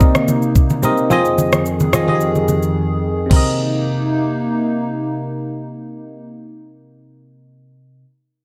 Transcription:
0.00 0.82 C3 loud
0.00 1.08 C3 medium
0.00 1.08 A#3 medium
0.00 0.83 C4 loud
0.00 1.08 D#4 medium
0.00 0.84 A#4 loud
0.00 1.12 D5 medium
0.00 0.85 D#5 loud
0.00 kick loud
0.00 shaker medium
0.15 cross-stick medium
0.15 high conga medium
0.15 shaker medium
0.28 high conga medium
0.28 shaker medium
0.42 shaker soft
0.55 kick medium
0.55 shaker medium
0.70 high conga medium
0.70 shaker medium
0.82 1.05 C3 medium
0.82 1.05 C4 medium
0.82 1.06 A#4 medium
0.82 1.06 D#5 loud
0.82 low conga medium
0.82 shaker medium
0.97 shaker soft
1.10 3.29 F2 medium
1.10 3.29 D#3 medium
1.10 1.77 F3 loud
1.10 1.77 C4 loud
1.10 3.29 G#4 medium
1.10 1.78 G#4 loud
1.10 1.78 D#5 loud
1.10 low conga medium
1.10 shaker medium
1.25 shaker soft
1.38 high conga medium
1.38 shaker medium
1.52 cross-stick medium
1.52 high conga medium
1.52 shaker medium
1.66 shaker medium
1.80 high conga medium
1.80 shaker medium
1.93 2.04 F3 medium
1.93 2.05 C4 medium
1.93 2.05 G#4 medium
1.93 2.06 D#5 medium
1.93 cross-stick medium
1.93 low conga medium
1.93 shaker loud
2.07 2.95 F3 medium
2.07 2.95 C4 medium
2.07 2.14 G4 medium
2.07 2.96 D#5 medium
2.07 high conga medium
2.15 2.99 G#4 medium
2.21 shaker medium
2.35 high conga medium
2.35 shaker soft
2.48 high conga medium
2.48 shaker medium
2.63 shaker soft
3.26 6.95 C3 medium
3.26 6.96 C4 medium
3.31 6.27 C3 medium
3.31 6.27 A#3 medium
3.31 6.27 D#4 medium
3.31 6.98 A#4 medium
3.31 kick loud
3.31 crash medium
3.31 high conga medium
3.36 7.00 D#5 medium

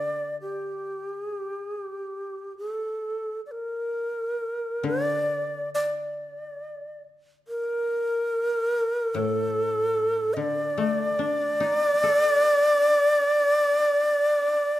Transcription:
0.00 2.13 D3 medium
0.00 0.37 D5 medium
0.42 1.18 G4 medium
1.18 1.39 G#4 medium
1.39 1.61 G4 medium
1.61 1.82 G#4 medium
1.82 2.56 G4 medium
2.58 3.41 A4 medium
3.46 3.53 D5 soft
3.52 4.85 A#4 medium
4.83 7.46 D3 medium
4.83 5.70 D5 medium
5.74 7.00 D5 medium
7.48 9.16 A#4 loud
9.15 10.38 A2 medium
9.15 10.35 A4 medium
10.34 12.87 D3 soft
10.34 14.80 D5 loud
10.34 10.38 D#5 medium
10.78 12.44 A3 soft
11.19 12.87 D4 soft
11.60 13.30 D#4 soft
12.03 13.73 A4 soft

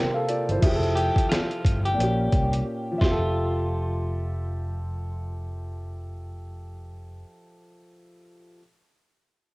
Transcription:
0.00 0.57 C3 medium
0.00 0.61 C3 medium
0.00 0.58 A#3 medium
0.00 0.59 C4 medium
0.00 0.29 F4 medium
0.00 0.60 F4 medium
0.00 0.59 A#4 medium
0.00 0.64 A#4 medium
0.00 0.13 G5 medium
0.14 0.28 A4 medium
0.14 0.27 F5 medium
0.29 0.48 F4 medium
0.29 0.48 D5 medium
0.29 closed hi-hat medium
0.49 0.60 G1 medium
0.49 0.83 E4 medium
0.49 0.82 C5 medium
0.49 closed hi-hat medium
0.59 1.09 F1 loud
0.59 1.94 F3 medium
0.59 1.96 E5 medium
0.59 kick loud
0.59 closed hi-hat loud
0.59 crash medium
0.66 1.98 G4 medium
0.66 0.73 G#4 medium
0.76 2.03 A4 medium
0.83 closed hi-hat soft
0.96 1.27 G4 medium
0.96 closed hi-hat medium
1.16 kick loud
1.16 closed hi-hat medium
1.29 1.81 F4 medium
1.29 snare loud
1.29 closed hi-hat medium
1.51 closed hi-hat soft
1.65 1.94 G1 medium
1.65 kick medium
1.65 closed hi-hat medium
1.85 2.63 G4 medium
1.85 closed hi-hat medium
1.94 2.96 A#2 medium
1.94 2.98 A#3 medium
1.99 2.28 A#1 loud
1.99 3.00 C#4 medium
1.99 closed hi-hat medium
2.03 3.01 G4 medium
2.32 2.62 C2 medium
2.32 kick medium
2.32 closed hi-hat medium
2.53 closed hi-hat medium
2.91 7.13 F3 medium
2.98 7.23 F1 medium
2.98 5.36 F4 medium
2.98 7.19 E5 medium
2.98 kick loud
2.98 snare medium
3.04 7.26 G4 medium
3.11 7.33 A4 medium

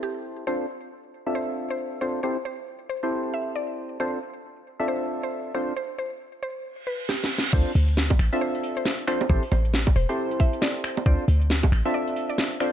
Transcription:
0.00 0.45 C4 medium
0.00 0.45 E4 medium
0.00 0.45 G4 medium
0.00 0.26 G4 medium
0.00 0.45 A4 medium
0.00 0.45 C5 medium
0.47 0.66 C4 medium
0.47 0.66 D4 medium
0.47 0.66 F4 medium
0.47 0.66 A4 medium
0.47 0.61 C5 loud
0.47 0.66 C5 medium
1.26 1.99 C4 medium
1.26 1.99 D4 medium
1.26 1.99 F4 medium
1.26 1.99 A4 medium
1.26 1.99 E5 medium
1.35 1.53 C5 medium
1.70 1.87 C5 medium
2.01 2.20 C4 medium
2.01 2.20 D4 medium
2.01 2.20 F4 medium
2.01 2.20 A4 medium
2.01 2.15 C5 medium
2.01 2.20 C5 medium
2.23 2.37 C4 medium
2.23 2.37 E4 medium
2.23 2.37 G4 medium
2.23 2.37 A4 medium
2.23 2.37 C5 medium
2.45 2.69 C5 medium
2.89 3.13 C5 medium
3.03 3.98 C4 medium
3.03 3.98 E4 medium
3.03 3.98 G4 medium
3.03 3.98 A4 medium
3.03 3.98 C5 medium
3.34 3.47 E5 medium
3.56 3.79 D5 medium
4.00 4.19 C4 medium
4.00 4.19 D4 medium
4.00 4.19 F4 medium
4.00 4.19 A4 medium
4.00 4.14 C5 medium
4.00 4.19 C5 medium
4.80 5.52 C4 medium
4.80 5.52 D4 medium
4.80 5.52 F4 medium
4.80 5.52 A4 medium
4.80 5.52 E5 medium
4.88 5.06 C5 medium
5.23 5.40 C5 medium
5.55 5.73 C4 medium
5.55 5.73 D4 medium
5.55 5.73 F4 medium
5.55 5.73 A4 medium
5.55 5.68 C5 medium
5.55 5.73 C5 medium
5.76 5.90 C5 medium
5.98 6.22 C5 medium
6.43 6.66 C5 medium
6.65 reverse cymbal medium
6.87 7.00 B4 medium
7.09 7.32 G4 medium
7.09 snare medium
7.24 snare medium
7.38 snare medium
7.53 7.63 D2 loud
7.53 7.72 C4 medium
7.53 7.72 D4 medium
7.53 7.72 F4 medium
7.53 7.72 A4 medium
7.53 7.72 C5 medium
7.53 7.67 C5 loud
7.53 kick loud
7.53 crash loud
7.75 8.16 D2 loud
7.75 open hi-hat loud
7.88 closed hi-hat medium
7.97 snare loud
8.10 kick loud
8.10 closed hi-hat soft
8.10 high bongo medium
8.19 8.30 A1 loud
8.19 finger snap medium
8.19 open hi-hat loud
8.33 9.05 C4 medium
8.33 9.05 D4 medium
8.33 9.05 F4 medium
8.33 9.05 A4 medium
8.33 9.05 E5 medium
8.33 closed hi-hat medium
8.41 8.60 C5 medium
8.55 closed hi-hat medium
8.63 open hi-hat loud
8.77 8.93 C5 medium
8.77 closed hi-hat medium
8.85 snare loud
8.99 closed hi-hat medium
9.08 9.26 C4 medium
9.08 9.26 D4 medium
9.08 9.26 F4 medium
9.08 9.26 A4 medium
9.08 9.21 C5 medium
9.08 9.26 C5 medium
9.08 finger snap medium
9.08 open hi-hat loud
9.21 closed hi-hat medium
9.21 high bongo medium
9.29 9.40 A1 loud
9.29 9.43 C4 medium
9.29 9.43 E4 medium
9.29 9.43 G4 medium
9.29 9.43 A4 medium
9.29 9.43 C5 medium
9.29 kick loud
9.43 open hi-hat medium
9.52 9.93 A1 loud
9.52 9.75 C5 loud
9.52 open hi-hat loud
9.52 high bongo medium
9.65 closed hi-hat medium
9.74 snare loud
9.87 kick loud
9.87 closed hi-hat soft
9.87 high bongo medium
9.96 10.06 E1 loud
9.96 10.19 C5 loud
9.96 open hi-hat loud
10.09 11.04 C4 medium
10.09 11.04 E4 medium
10.09 11.04 G4 medium
10.09 11.04 A4 medium
10.09 11.04 C5 medium
10.09 closed hi-hat medium
10.31 closed hi-hat medium
10.40 10.53 E5 medium
10.40 kick loud
10.40 open hi-hat loud
10.53 closed hi-hat medium
10.62 10.85 D5 medium
10.62 snare loud
10.75 closed hi-hat soft
10.84 finger snap medium
10.84 open hi-hat loud
10.97 closed hi-hat medium
10.97 high bongo medium
11.06 11.16 D2 loud
11.06 11.25 C4 medium
11.06 11.25 D4 medium
11.06 11.25 F4 medium
11.06 11.25 A4 medium
11.06 11.25 C5 medium
11.06 11.20 D5 loud
11.06 kick loud
11.28 11.69 D2 loud
11.28 open hi-hat loud
11.41 closed hi-hat medium
11.50 snare loud
11.63 kick loud
11.63 closed hi-hat soft
11.63 high bongo medium
11.72 11.82 A1 medium
11.72 finger snap medium
11.72 open hi-hat loud
11.85 12.58 C4 medium
11.85 12.58 D4 medium
11.85 12.58 F4 medium
11.85 12.58 A4 medium
11.85 12.58 E5 medium
11.85 closed hi-hat medium
11.94 12.12 D5 loud
12.08 closed hi-hat medium
12.16 open hi-hat loud
12.29 12.46 D5 loud
12.29 closed hi-hat medium
12.38 snare loud
12.52 closed hi-hat medium
12.60 12.72 C4 medium
12.60 12.72 D4 medium
12.60 12.72 F4 medium
12.60 12.72 A4 medium
12.60 12.72 C5 medium
12.60 12.72 D5 medium
12.60 finger snap medium
12.60 open hi-hat loud

